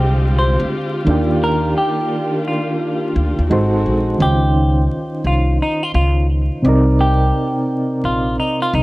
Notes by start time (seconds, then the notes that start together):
Already playing: C2 D3 G#3 C4 F4 G4
0.39 C5
0.60 D2
1.05 D#2 D#3 A#3 D4
1.09 F4 G4
1.44 A#4
1.78 G4
2.48 F4
3.16 D2
3.39 D#2
3.50 G#1 G#3 C4 D#4 F#4 A4 C5
3.86 A#1
4.18 C#2 D#3 C#4 D#4
4.22 F4 G4 C5
5.24 C2 F4
5.62 D#4
5.83 F4
5.94 C#2 F4
6.62 C2 C3 C4 D5
6.67 D#4 A#4
7.01 G4
8.04 A#1 F4
8.40 D#4
8.62 F4
8.73 C2 D#4